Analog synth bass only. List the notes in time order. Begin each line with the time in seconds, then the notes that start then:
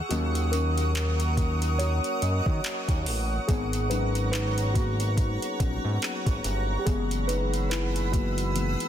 0.11 D#2
2.22 F#2
2.46 D#3
2.89 D#2
3.07 A1
3.49 G#1
5.60 A#1
5.85 G#2
6.27 G#1
6.45 G1
6.87 F#1